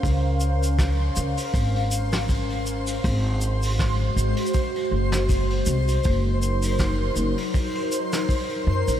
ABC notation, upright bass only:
X:1
M:4/4
L:1/16
Q:"Swing 16ths" 1/4=80
K:Db
V:1 name="Upright bass" clef=bass
D,,6 D,, z A,,,8 | A,,,6 A,,, z3 G,,,4 C,, z | G,,,6 G,,, z6 z G,, B,,, |]